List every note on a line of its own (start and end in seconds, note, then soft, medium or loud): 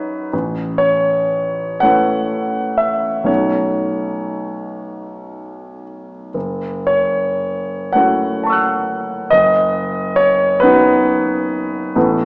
0.00 0.28 C#4 soft
0.00 0.29 D#4 soft
0.00 0.29 F#4 soft
0.00 0.31 B4 medium
0.00 0.35 C#5 medium
0.33 1.79 A1 soft
0.78 1.82 C#5 medium
1.80 3.23 A3 soft
1.80 3.23 C#4 soft
1.80 3.24 E4 soft
1.80 3.24 B4 soft
1.80 2.78 F#5 medium
2.78 3.27 E5 soft
3.24 6.28 B1 soft
3.24 6.29 A3 soft
3.24 6.29 C#4 soft
3.24 6.30 D#4 soft
3.24 6.30 F#4 soft
3.24 5.81 C#5 soft
6.34 7.90 F#1 soft
6.87 7.94 C#5 medium
7.93 9.28 A3 soft
7.93 9.28 C#4 soft
7.93 9.28 E4 soft
7.93 9.28 F#4 soft
7.93 9.31 F#5 medium
8.43 9.28 A5 soft
8.43 9.30 C#6 soft
8.50 9.31 E6 soft
8.50 9.33 F#6 soft
9.30 10.60 F#1 soft
9.30 10.18 D#5 medium
10.16 10.62 C#5 medium
10.60 11.91 B3 soft
10.60 11.91 C#4 soft
10.60 11.92 D#4 soft
10.60 11.92 F#4 soft
10.60 11.94 B4 medium
11.96 12.25 A1 soft
11.96 12.25 A3 soft
11.96 12.25 B3 soft
11.96 12.25 E4 soft
11.96 12.25 B4 soft